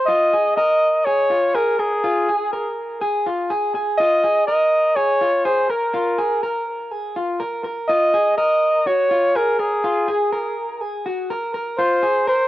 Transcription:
0.06 0.32 F4 loud
0.06 0.53 D#5 loud
0.33 0.57 G#4 medium
0.57 1.03 A#4 medium
0.57 1.07 D#5 loud
1.05 1.31 G#4 medium
1.05 1.57 C#5 loud
1.30 1.54 F4 medium
1.55 1.79 G#4 medium
1.55 1.81 A#4 medium
1.79 2.77 G#4 medium
1.79 2.03 A#4 medium
2.04 2.28 F4 medium
2.29 2.52 G#4 medium
2.53 2.98 A#4 medium
3.01 3.25 G#4 loud
3.26 3.50 F4 medium
3.50 3.74 G#4 medium
3.75 3.99 G#4 medium
3.98 4.24 F4 loud
3.98 4.44 D#5 loud
4.24 4.48 G#4 medium
4.47 4.93 A#4 medium
4.47 4.98 D#5 loud
4.96 5.21 G#4 medium
4.96 5.47 C#5 loud
5.21 5.45 F4 medium
5.45 5.69 G#4 loud
5.45 5.72 C5 medium
5.70 5.94 A#4 medium
5.70 6.67 A#4 medium
5.94 6.18 F4 medium
6.18 6.42 G#4 medium
6.43 6.91 A#4 medium
6.91 7.15 G#4 medium
7.16 7.40 F4 medium
7.40 7.63 A#4 medium
7.64 7.89 A#4 medium
7.88 8.13 F4 medium
7.88 8.34 D#5 loud
8.14 8.37 G#4 medium
8.37 8.83 A#4 medium
8.37 8.88 D#5 loud
8.87 9.10 F#4 medium
8.87 9.38 C#5 loud
9.11 9.35 F4 medium
9.35 9.59 G#4 loud
9.35 9.61 A#4 medium
9.59 10.57 G#4 medium
9.59 9.84 A#4 medium
9.84 10.08 F4 medium
10.08 10.32 G#4 medium
10.32 10.81 A#4 medium
10.81 11.05 G#4 medium
11.06 11.30 F#4 medium
11.30 11.53 A#4 medium
11.54 11.78 A#4 medium
11.78 12.03 F4 loud
11.78 12.23 C5 loud
12.03 12.27 G#4 medium
12.27 12.48 A#4 medium
12.27 12.48 C5 loud

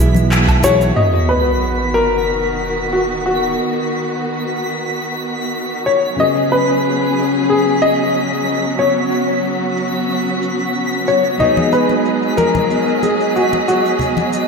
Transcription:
0.00 0.91 B1 loud
0.00 0.60 E3 medium
0.00 0.92 G#3 medium
0.00 0.92 B3 medium
0.00 0.60 E4 medium
0.00 0.61 F#4 medium
0.00 0.61 G#4 medium
0.00 0.27 B4 loud
0.00 0.61 E5 medium
0.00 0.97 B6 medium
0.14 muted conga soft
0.14 high conga medium
0.14 cabasa soft
0.32 clap medium
0.32 cabasa soft
0.48 kick loud
0.48 cabasa soft
0.48 low woodblock medium
0.63 0.92 E3 medium
0.63 0.92 E4 medium
0.63 0.93 F#4 medium
0.63 0.93 G#4 medium
0.63 0.98 C#5 loud
0.63 0.94 F#5 loud
0.63 kick medium
0.63 muted conga medium
0.63 cabasa medium
0.81 cabasa soft
0.94 6.14 D#3 medium
0.94 6.13 B3 medium
0.94 6.14 B3 medium
0.94 6.14 F#4 medium
0.94 6.15 C#5 medium
0.94 1.30 D#5 medium
0.94 sub drop medium
0.94 cabasa soft
0.98 6.16 D#5 medium
0.98 14.48 B6 medium
1.14 cabasa soft
1.29 1.96 B4 medium
1.29 cabasa medium
1.46 cabasa soft
1.61 cabasa soft
1.94 2.88 A#4 loud
2.93 3.00 F#4 medium
3.26 4.52 F#4 medium
5.21 cabasa medium
5.86 6.16 C#5 medium
6.16 11.35 C#3 medium
6.16 11.36 F#3 medium
6.16 14.48 B3 medium
6.16 11.36 C#4 medium
6.16 11.36 F#4 medium
6.16 8.77 G#4 medium
6.16 6.27 D#5 medium
6.20 11.37 B4 medium
6.20 11.38 D#5 medium
6.51 7.52 B4 medium
6.51 cabasa medium
7.16 cabasa medium
7.50 7.80 G#4 medium
7.50 cabasa soft
7.82 8.82 D#5 loud
7.82 cabasa medium
8.15 cabasa soft
8.47 cabasa medium
8.64 cabasa soft
8.79 11.38 F#4 medium
8.79 11.06 C#5 medium
8.79 cabasa soft
8.97 cabasa soft
9.12 cabasa medium
9.29 cabasa soft
9.45 cabasa soft
9.62 cabasa soft
9.77 cabasa medium
9.95 cabasa soft
10.10 cabasa soft
10.27 cabasa soft
10.43 cabasa medium
10.59 cabasa soft
10.75 cabasa soft
10.92 cabasa soft
11.07 11.41 C#5 medium
11.07 cabasa medium
11.25 cabasa soft
11.38 14.48 F#3 medium
11.38 14.48 G#3 medium
11.38 14.48 D#4 medium
11.38 14.48 F#4 medium
11.38 14.48 G#4 medium
11.38 14.48 D#5 medium
11.38 11.70 D#5 medium
11.38 low conga medium
11.38 cabasa soft
11.42 14.48 B3 medium
11.42 14.48 G#4 medium
11.57 high conga medium
11.57 cabasa soft
11.72 12.34 B4 medium
11.72 cabasa medium
11.89 muted conga soft
11.89 cabasa soft
12.05 cabasa soft
12.22 cabasa soft
12.37 13.05 A#4 medium
12.37 muted conga medium
12.37 high conga medium
12.37 cabasa medium
12.55 high conga medium
12.55 low conga medium
12.55 cabasa soft
12.70 cabasa soft
12.88 cabasa soft
13.03 13.33 G#4 medium
13.03 muted conga soft
13.03 cabasa medium
13.21 cabasa soft
13.36 13.67 F#4 medium
13.36 cabasa soft
13.53 muted conga medium
13.53 cabasa soft
13.68 14.48 F#4 medium
13.68 cabasa medium
13.86 cabasa soft
13.99 low conga medium
13.99 cabasa soft
14.17 muted conga soft
14.17 high conga medium
14.17 cabasa soft
14.33 cabasa medium

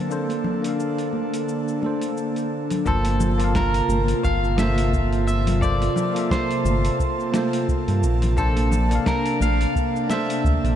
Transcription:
0.00 2.82 D3 medium
0.00 0.09 A#3 medium
0.00 2.82 A#3 medium
0.00 0.11 D4 medium
0.00 0.12 A4 medium
0.00 2.82 A4 medium
0.00 0.12 C5 medium
0.00 2.88 A5 medium
0.09 0.59 A#3 medium
0.09 0.60 D4 medium
0.09 2.83 D4 medium
0.09 0.60 A4 medium
0.09 0.61 C5 medium
0.09 shaker medium
0.29 open hi-hat soft
0.29 muted conga soft
0.29 shaker soft
0.44 low conga medium
0.62 1.78 A#3 medium
0.62 1.79 D4 medium
0.62 open hi-hat soft
0.62 shaker medium
0.67 1.80 A4 medium
0.67 1.81 F5 medium
0.80 shaker medium
0.98 open hi-hat soft
0.98 shaker soft
1.13 high conga medium
1.34 open hi-hat soft
1.34 shaker medium
1.49 shaker soft
1.68 shaker soft
1.80 2.81 A#3 medium
1.80 2.82 D4 medium
1.80 2.83 A4 medium
1.80 muted conga soft
1.80 high conga medium
1.86 2.84 C5 medium
2.02 open hi-hat soft
2.02 shaker medium
2.17 shaker medium
2.36 open hi-hat soft
2.36 shaker soft
2.70 open hi-hat soft
2.70 low conga medium
2.70 shaker medium
2.86 3.82 G1 loud
2.86 8.34 C3 medium
2.86 3.35 A#3 medium
2.86 10.76 A#3 medium
2.86 8.34 F4 loud
2.86 3.35 F4 medium
2.86 3.36 A4 medium
2.86 3.56 A4 medium
2.86 3.36 C5 loud
2.86 10.76 A5 medium
2.86 kick loud
2.86 shaker soft
3.05 open hi-hat soft
3.05 muted conga soft
3.05 shaker soft
3.20 low conga loud
3.20 shaker medium
3.38 4.54 A#3 medium
3.38 4.55 F4 medium
3.38 4.56 A5 medium
3.38 open hi-hat medium
3.38 shaker soft
3.44 4.57 F5 medium
3.55 4.20 A#4 loud
3.55 kick loud
3.55 snare medium
3.55 shaker soft
3.74 open hi-hat soft
3.74 shaker soft
3.88 4.14 G1 loud
3.88 high conga medium
3.88 shaker medium
4.08 open hi-hat medium
4.08 shaker soft
4.24 5.89 G1 loud
4.24 4.59 F5 loud
4.24 kick loud
4.24 shaker soft
4.44 shaker soft
4.56 5.57 A#3 medium
4.56 5.58 F4 medium
4.56 5.26 E5 loud
4.56 snare medium
4.56 high conga medium
4.56 shaker medium
4.60 5.59 A4 medium
4.60 5.60 C5 medium
4.78 open hi-hat medium
4.78 shaker soft
4.93 kick loud
4.93 shaker soft
5.13 open hi-hat soft
5.13 shaker soft
5.28 5.62 E5 medium
5.28 shaker medium
5.47 open hi-hat medium
5.47 low conga medium
5.47 shaker soft
5.61 6.11 A#3 medium
5.61 6.11 F4 medium
5.61 6.12 A4 medium
5.61 6.12 C5 medium
5.61 6.33 D5 loud
5.61 kick loud
5.61 shaker soft
5.80 open hi-hat soft
5.80 muted conga soft
5.80 shaker soft
5.96 low conga loud
5.96 shaker medium
6.13 7.29 A#3 medium
6.13 7.30 F4 medium
6.13 7.31 A4 medium
6.13 open hi-hat medium
6.13 shaker soft
6.19 7.32 E5 medium
6.31 7.31 C5 medium
6.31 kick loud
6.31 snare medium
6.31 shaker soft
6.51 open hi-hat soft
6.51 shaker soft
6.65 6.90 G1 loud
6.65 high conga medium
6.65 shaker medium
6.85 open hi-hat medium
6.85 shaker soft
7.00 kick loud
7.00 shaker medium
7.20 shaker soft
7.32 8.33 A#3 medium
7.32 8.34 F4 medium
7.32 snare medium
7.32 muted conga soft
7.32 high conga medium
7.32 shaker medium
7.36 8.35 A4 medium
7.36 8.36 C5 medium
7.53 open hi-hat medium
7.53 shaker soft
7.69 kick loud
7.69 shaker soft
7.88 8.04 G2 medium
7.88 open hi-hat soft
7.88 shaker soft
8.03 8.99 A#1 medium
8.03 shaker medium
8.22 open hi-hat medium
8.22 low conga medium
8.22 shaker soft
8.36 10.76 C3 medium
8.36 8.86 A#3 medium
8.36 10.76 D4 loud
8.36 8.87 D4 medium
8.36 9.03 A4 medium
8.36 8.88 A4 medium
8.36 8.88 C5 loud
8.36 kick loud
8.36 shaker soft
8.56 open hi-hat soft
8.56 muted conga medium
8.56 shaker soft
8.71 low conga loud
8.71 shaker medium
8.89 10.05 A#3 medium
8.89 10.06 D4 medium
8.89 10.07 A5 medium
8.89 open hi-hat medium
8.89 shaker soft
8.95 10.08 F5 medium
9.06 9.39 A#4 loud
9.06 kick loud
9.06 snare medium
9.06 shaker soft
9.26 open hi-hat soft
9.26 shaker soft
9.40 9.66 A#1 loud
9.40 10.10 F5 loud
9.40 high conga medium
9.40 shaker medium
9.61 open hi-hat medium
9.61 shaker soft
9.76 kick loud
9.76 shaker soft
9.96 shaker soft
10.08 10.76 A#3 medium
10.08 10.76 D4 medium
10.08 10.76 E5 loud
10.08 snare medium
10.08 high conga medium
10.08 shaker medium
10.12 10.76 A4 medium
10.12 10.76 C5 medium
10.30 open hi-hat medium
10.30 shaker soft
10.44 10.58 D2 loud
10.44 kick loud
10.44 shaker soft
10.64 10.76 A#1 loud
10.64 open hi-hat soft
10.64 shaker soft

